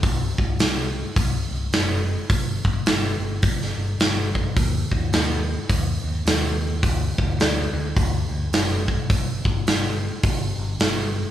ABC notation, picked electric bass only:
X:1
M:4/4
L:1/8
Q:"Swing" 1/4=106
K:Dphr
V:1 name="Picked electric bass" clef=bass
C,, C,, C,,2 C,, C,, ^F,,,2 | G,,, G,,, G,,, G,,, G,,, G,,, G,,,2 | E,, E,, E,,2 E,, E,, E,,2 | D,, D,, D,, D,, D,, D,, ^F,,,2 |
G,,, G,,, G,,,2 G,,, G,,, G,,,2 |]